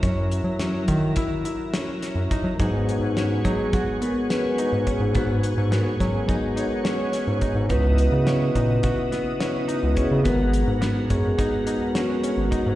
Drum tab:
HH |xxxxxxxxx|xxxxxxxxx|xxxxxxxxx|xxxxxxxxx|
SD |--o---oo-|--oo--o--|--oo--oo-|--o--oo--|
BD |o--oo---o|o--oo---o|o--oo---o|o--oo---o|

HH |xxxxxxxxx|
SD |--o---o--|
BD |o--oo---o|